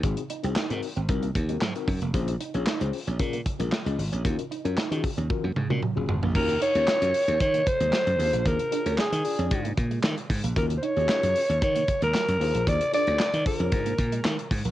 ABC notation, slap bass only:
X:1
M:4/4
L:1/16
Q:1/4=114
K:Ebdor
V:1 name="Slap bass" clef=bass
A,,, z2 C,, z A,, z A,,, C,,2 E,,2 A,, z G,, F,,, | B,,,2 z B,,, z D,, z B,,, B,,2 z B,,, z D,, A,,, B,,, | E,, z2 G,, z E, z E,, z G,, A,, B,, z G,,, A,,, B,,, | E,,2 z E,, z G,, z E,, E,2 z E,, z G,, E,, B,,, |
E,, z2 =D,, z E, z F,, A,,2 B,,2 E, z A,, B,,, | E,,2 z E,, z G,, z E,, E,2 z E,, z G,, E,, B,,, | E,, z2 =D,, z E, z F,, A,,2 B,,2 E, z A,, B,,, |]